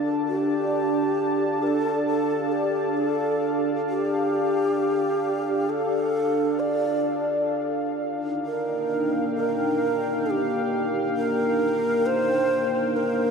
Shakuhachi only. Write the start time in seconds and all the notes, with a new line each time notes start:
0.28 G4
1.63 A#4
1.67 A4
2.07 A4
2.52 G4
2.97 A4
3.89 G4
5.69 A4
6.60 D5
8.45 A#4
9.36 A#4
10.26 A4
10.30 G4
11.17 A#4
12.06 C5
12.96 A#4